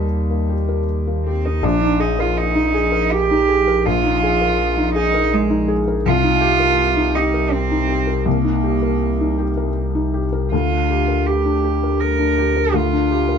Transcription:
0.00 1.59 D#2 medium
0.00 1.62 D#2 medium
0.00 1.22 G3 medium
0.00 0.30 A#3 soft
0.00 0.49 G4 soft
0.00 0.53 A#4 soft
0.00 0.84 D#5 medium
0.30 0.61 A#3 soft
0.49 0.80 G4 soft
0.69 1.30 A#4 soft
1.07 1.37 A#3 soft
1.26 1.47 C4 medium
1.26 1.56 G4 soft
1.45 1.65 D#4 medium
1.45 1.64 A#4 soft
1.63 6.06 A#1 medium
1.63 3.81 A#1 medium
1.63 2.02 D4 loud
1.82 2.11 D#4 medium
2.00 2.21 D#4 medium
2.00 2.29 G#4 soft
2.19 2.39 F4 medium
2.19 2.78 A#4 medium
2.38 3.13 D#4 medium
2.55 2.85 D#4 medium
2.74 3.04 G#4 medium
2.92 3.52 A#4 medium
3.11 3.87 G4 loud
3.31 3.60 D#4 medium
3.49 3.78 G#4 medium
3.67 3.97 A#4 medium
3.86 6.01 A#1 medium
3.86 4.95 F4 loud
4.04 4.33 D#4 medium
4.23 4.52 G#4 medium
4.41 4.99 A#4 medium
4.77 5.06 D#4 medium
4.95 5.34 D#4 loud
4.95 5.25 G#4 medium
5.14 5.72 A#4 medium
5.33 5.69 G#3 medium
5.50 5.79 D#4 medium
5.68 5.97 G#4 medium
5.88 6.05 A#4 medium
6.05 10.54 C2 medium
6.05 8.23 C2 medium
6.05 7.17 F4 loud
6.24 6.52 D#4 medium
6.41 6.70 G4 medium
6.60 7.18 A#4 medium
6.96 7.25 D#4 medium
7.15 7.53 D#4 medium
7.15 7.44 G4 medium
7.34 7.93 A#4 medium
7.51 8.28 C4 loud
7.71 8.00 D#4 medium
7.88 8.18 G4 soft
8.07 8.37 A#4 soft
8.25 10.48 C2 medium
8.25 9.77 A#3 medium
8.44 8.75 D#4 soft
8.64 8.94 G4 soft
8.82 9.43 A#4 soft
9.20 9.50 D#4 soft
9.38 9.69 G4 soft
9.57 10.18 A#4 soft
9.95 10.25 D#4 soft
10.14 10.44 G4 soft
10.32 10.52 A#4 soft
10.52 12.70 D2 medium
10.52 13.38 D2 medium
10.52 11.28 F4 medium
10.71 11.01 D4 soft
10.90 11.19 G4 soft
11.08 11.67 A#4 soft
11.26 12.02 G4 medium
11.45 11.75 D4 soft
11.64 11.94 G4 soft
11.83 12.42 A#4 soft
12.00 12.75 A#4 medium
12.19 12.48 D4 soft
12.38 12.67 G4 soft
12.56 12.85 A#4 soft
12.74 13.38 D2 medium
12.74 13.38 F4 medium
12.93 13.21 D4 soft
13.11 13.38 G4 soft
13.29 13.38 A#4 soft

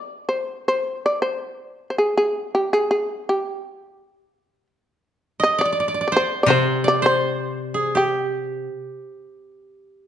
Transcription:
0.00 0.24 D5 medium
0.29 0.64 C5 medium
0.68 1.02 C5 medium
1.06 1.22 D5 medium
1.22 1.87 C5 medium
1.90 1.95 C5 medium
1.98 2.14 G#4 medium
2.17 2.50 G#4 medium
2.55 2.70 G4 medium
2.73 2.88 G#4 medium
2.91 3.23 G#4 medium
3.29 4.67 G4 medium
5.40 5.64 D#5 medium
5.40 5.58 D#5 loud
5.58 5.65 D5 medium
5.58 6.04 D5 loud
5.65 5.72 D5 medium
5.72 5.80 D5 medium
5.80 5.88 D5 medium
5.88 5.94 D5 medium
5.94 6.01 D5 medium
6.01 6.84 D5 medium
6.08 6.13 D5 medium
6.12 6.48 C5 medium
6.16 6.42 C5 medium
6.43 8.66 C3 medium
6.43 6.49 D5 medium
6.48 7.02 C5 medium
6.48 6.83 C5 loud
6.84 8.44 D5 medium
6.84 7.04 D5 loud
7.02 8.74 C5 medium
7.02 7.91 C5 loud
7.74 8.01 G#4 medium
7.95 10.07 G4 medium

